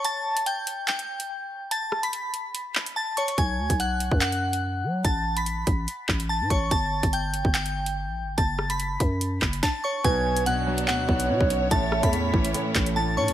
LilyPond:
<<
  \new Staff \with { instrumentName = "Synth bell" } { \time 4/4 \key b \dorian \tempo 4 = 144 <a'' a'''>4 <g'' g'''>4 <g'' g'''>2 | <a'' a'''>8. <b'' b'''>2~ <b'' b'''>16 <a'' a'''>8 <cis'' cis'''>8 | <gis'' gis'''>4 <fis'' fis'''>4 <fis'' fis'''>2 | <a'' a'''>8. <b'' b'''>2~ <b'' b'''>16 <a'' a'''>8 <cis'' cis'''>8 |
<a'' a'''>4 <g'' g'''>4 <g'' g'''>2 | <a'' a'''>8. <b'' b'''>2~ <b'' b'''>16 <a'' a'''>8 <cis'' cis'''>8 | <gis'' gis'''>4 <fis'' fis'''>4 <fis'' fis'''>2 | <a'' a'''>8. <b'' b'''>2~ <b'' b'''>16 <a'' a'''>8 <cis'' cis'''>8 | }
  \new Staff \with { instrumentName = "Soft synth lead" } { \time 4/4 \key b \dorian r1 | r1 | r1 | r1 |
r1 | r1 | b'4 r4. cis''4. | e''4 r2. | }
  \new Staff \with { instrumentName = "String section" } { \time 4/4 \key b \dorian << { r1 | r1 | r1 | r1 |
r1 | r1 | cis''1~ | cis''1 | } \\ { r1 | r1 | r1 | r1 |
r1 | r1 | <b d' fis'>1 | <a cis' e'>1 | } >> }
  \new Staff \with { instrumentName = "Grand piano" } { \clef bass \time 4/4 \key b \dorian r1 | r1 | r1 | r1 |
r1 | r1 | b,4 b,8 fis8 b,8 b8 b,8 cis'8 | a,4 a,8 e8 a,8 a8 a,8 cis'8 | }
  \new Staff \with { instrumentName = "808-style bass" } { \clef bass \time 4/4 \key b \dorian r1 | r1 | b,,8 d,16 b,,4 fis,4.~ fis,16 fis8 | a,,4. a,,8 r8 a,,8. a,16 a,,8 |
g,,8. g,,4 g,,4. a,,16. g,,16. | fis,,4. fis,4 fis,,8 r4 | b,,2 d,8 b,,8 b,16 b,,8. | a,,8. e,8. a,,8 r8 a,,4 a,16 a,,16 | }
  \new DrumStaff \with { instrumentName = "Drums" } \drummode { \time 4/4 hh8. hh16 hh8 hh8 <hc hh>16 hh8 hh16 r4 | hh8 ss16 hh16 hh8 hh8 hh8 hc16 hh16 r8 hh16 hh16 | <hh bd>8. <hh bd>16 hh8 hh16 bd16 <hc hh>16 hh8 hh16 r4 | <hh bd>8. hh16 hh8 <hh bd>8 hh8 <hc bd>16 hh16 r8 <hh bd>8 |
<hh bd>8. <hh bd>16 hh8 hh16 bd16 <hc hh>16 hh8 hh16 r4 | <hh bd>8 ss16 hh16 hh8 <hh bd>8 hh8 <hc bd>16 hh16 <bd sn>4 | <hh bd>8. hh16 hh8. hh16 hc8 bd16 hh16 r16 bd16 hh8 | <hh bd>8 ss16 <hh bd>16 hh8 bd16 hh16 hh8 <hc hh bd>16 hh16 r8. hh16 | }
>>